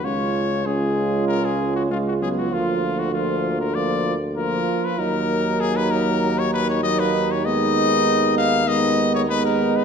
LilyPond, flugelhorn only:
\new Staff \with { instrumentName = "Flugelhorn" } { \time 4/4 \key ees \minor \tempo 4 = 97 f'4 f'2 f'4 | f'4 f'4 f'8 r8 f'4 | ees'2. ees'4 | ees'2 ees'4 ees'4 | }